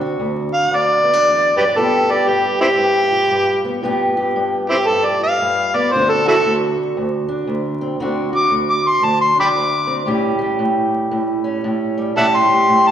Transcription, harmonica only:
0.54 0.77 F5 loud
0.75 1.55 D5 medium
1.57 1.64 G4 medium
1.57 1.64 B4 medium
1.57 1.80 D5 medium
1.78 2.13 A4 medium
2.11 2.30 D5 medium
2.29 2.59 G4 medium
2.61 2.67 C4 medium
2.61 2.68 E4 medium
2.61 3.61 G4 loud
4.70 4.77 C4 medium
4.70 4.76 E4 medium
4.70 4.88 G4 loud
4.87 5.07 A4 medium
5.05 5.22 D5 medium
5.23 5.77 F5 loud
5.76 5.94 D5 medium
5.93 6.11 C5 medium
6.09 6.26 A4 medium
6.28 6.36 E4 medium
6.28 6.36 F#4 medium
6.28 6.54 A4 loud
8.36 8.52 D6 loud
8.70 8.89 D6 medium
8.88 9.06 C6 medium
9.04 9.21 A5 loud
9.21 9.38 C6 medium
9.40 9.49 G5 medium
9.40 9.48 B5 medium
9.40 10.06 D6 medium
12.17 12.26 E5 medium
12.17 12.26 F#5 medium
12.17 12.38 A5 loud
12.36 12.89 C6 medium
12.87 12.91 A5 loud

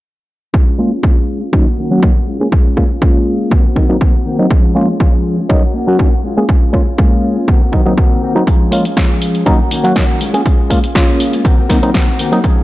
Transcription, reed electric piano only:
0.78 0.91 G#3 medium
0.78 0.91 A#3 medium
0.78 0.91 C#4 medium
0.78 0.91 F4 medium
1.03 1.15 G#3 medium
1.03 1.15 A#3 medium
1.03 1.15 C#4 medium
1.03 1.16 F4 medium
1.53 1.65 F#3 medium
1.53 1.65 A#3 medium
1.53 1.65 C#4 medium
1.53 1.65 D#4 loud
1.91 2.00 F#3 medium
1.91 2.00 A#3 medium
1.91 2.00 C#4 medium
1.91 2.00 F#4 medium
2.02 2.10 F#3 medium
2.02 2.10 A#3 medium
2.02 2.10 C#4 medium
2.02 2.10 D#4 medium
2.40 2.47 G#3 medium
2.40 2.47 A#3 medium
2.40 2.47 C#4 medium
2.40 2.47 G#4 medium
2.77 2.84 G#3 medium
2.77 2.85 A#3 medium
2.77 2.85 C#4 medium
2.77 2.85 F4 medium
3.01 3.50 G#3 medium
3.01 3.50 A#3 medium
3.01 3.50 C#4 medium
3.01 3.50 F4 medium
3.76 3.83 F#3 medium
3.76 3.84 A#3 medium
3.76 3.84 C4 medium
3.76 3.84 D#4 medium
3.89 3.96 F#3 medium
3.89 3.96 A#3 medium
3.89 3.96 C4 medium
3.89 3.96 D#4 medium
4.39 4.45 F#3 medium
4.39 4.46 A#3 medium
4.39 4.46 C4 medium
4.39 4.46 D#4 medium
4.75 4.87 G#3 medium
4.75 4.87 A#3 medium
4.75 4.88 C#4 medium
4.75 4.88 F4 medium
5.00 5.12 G#3 medium
5.00 5.12 A#3 medium
5.00 5.12 C#4 medium
5.00 5.12 F4 medium
5.49 5.62 F#3 medium
5.49 5.62 A#3 medium
5.49 5.62 C#4 medium
5.49 5.62 D#4 loud
5.87 5.96 F#3 medium
5.87 5.96 A#3 medium
5.87 5.97 C#4 medium
5.87 5.97 F#4 medium
5.99 6.07 F#3 medium
5.99 6.07 A#3 medium
5.99 6.07 C#4 medium
5.99 6.07 D#4 medium
6.37 6.44 G#3 medium
6.37 6.44 A#3 medium
6.37 6.44 C#4 medium
6.37 6.44 G#4 medium
6.73 6.81 G#3 medium
6.73 6.81 A#3 medium
6.73 6.81 C#4 medium
6.73 6.81 F4 medium
6.98 7.46 G#3 medium
6.98 7.47 A#3 medium
6.98 7.47 C#4 medium
6.98 7.47 F4 medium
7.72 7.80 F#3 medium
7.72 7.80 A#3 medium
7.72 7.80 C4 medium
7.72 7.80 D#4 medium
7.86 7.92 F#3 medium
7.86 7.93 A#3 medium
7.86 7.93 C4 medium
7.86 7.93 D#4 medium
8.35 8.42 F#3 medium
8.35 8.42 A#3 medium
8.35 8.42 C4 medium
8.35 8.42 D#4 medium
8.71 8.84 G#3 medium
8.71 8.84 A#3 medium
8.71 8.84 C#4 medium
8.71 8.84 F4 medium
8.96 9.09 G#3 medium
8.96 9.09 A#3 medium
8.96 9.09 C#4 medium
8.96 9.09 F4 medium
9.46 9.58 F#3 medium
9.46 9.58 A#3 medium
9.46 9.58 C#4 medium
9.46 9.59 D#4 loud
9.84 9.93 F#3 medium
9.84 9.93 A#3 medium
9.84 9.93 C#4 medium
9.84 9.93 F#4 medium
9.95 10.03 F#3 medium
9.95 10.03 A#3 medium
9.95 10.03 C#4 medium
9.95 10.04 D#4 medium
10.33 10.40 G#3 medium
10.33 10.41 A#3 medium
10.33 10.41 C#4 medium
10.33 10.41 G#4 medium
10.70 10.78 G#3 medium
10.70 10.78 A#3 medium
10.70 10.78 C#4 medium
10.70 10.78 F4 medium
10.95 11.43 G#3 medium
10.95 11.44 A#3 medium
10.95 11.44 C#4 medium
10.95 11.44 F4 medium
11.69 11.77 F#3 medium
11.69 11.77 A#3 medium
11.69 11.77 C4 medium
11.69 11.77 D#4 medium
11.82 11.89 F#3 medium
11.82 11.89 A#3 medium
11.82 11.89 C4 medium
11.82 11.90 D#4 medium
12.32 12.39 F#3 medium
12.32 12.39 A#3 medium
12.32 12.39 C4 medium
12.32 12.39 D#4 medium

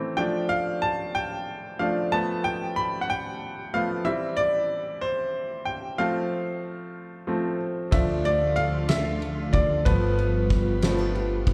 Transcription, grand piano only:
0.00 0.20 E3 medium
0.00 0.18 A3 soft
0.00 0.21 C4 medium
0.00 0.20 E5 medium
0.17 1.78 F3 medium
0.17 1.79 A3 soft
0.17 1.79 D4 medium
0.17 0.51 G5 medium
0.49 0.83 F5 medium
0.82 1.16 A5 loud
1.15 1.81 G5 loud
1.79 2.09 F3 soft
1.79 2.09 A3 soft
1.79 2.09 D4 soft
1.79 2.13 F5 medium
2.12 3.05 F3 medium
2.12 3.05 A3 medium
2.12 3.05 B3 medium
2.12 2.45 A5 loud
2.44 2.77 G5 loud
2.76 2.82 B5 loud
3.01 3.08 F#5 medium
3.10 3.76 G5 loud
3.74 4.03 F3 soft
3.74 4.03 A3 soft
3.74 4.03 B3 soft
3.74 4.07 F5 medium
4.05 4.48 E3 medium
4.05 4.48 G3 medium
4.05 4.49 C4 medium
4.05 4.35 E5 loud
4.37 5.04 D5 loud
5.01 5.68 C5 medium
5.65 5.73 G5 medium
5.98 6.41 F3 medium
5.98 6.42 A3 medium
5.98 6.42 C4 medium
5.98 7.24 F5 medium
7.27 7.56 F3 medium
7.27 7.57 A3 soft
7.27 7.57 C4 soft
7.91 8.35 F3 medium
7.91 8.35 A3 medium
7.91 8.35 D4 medium
7.91 8.26 E5 loud
8.25 8.55 D5 loud
8.56 8.90 F5 loud
8.89 9.55 E5 medium
9.53 9.86 D5 medium
9.85 10.78 F3 medium
9.85 10.79 A3 medium
9.85 10.79 B3 medium
9.85 11.42 B4 medium
10.83 11.12 F3 medium
10.83 11.12 A3 soft
10.83 11.12 B3 soft

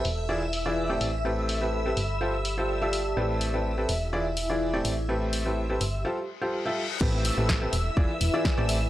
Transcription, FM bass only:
0.05 0.99 E1 medium
1.01 1.95 A1 medium
1.97 3.15 G1 medium
3.17 3.87 A1 medium
3.89 4.83 E1 medium
4.85 5.79 A1 medium
5.81 6.05 G1 medium
7.01 7.31 A1 loud
7.38 7.67 A1 medium
7.73 7.90 E1 medium
7.97 8.06 E1 medium
8.21 8.30 E1 loud
8.58 8.87 A1 medium

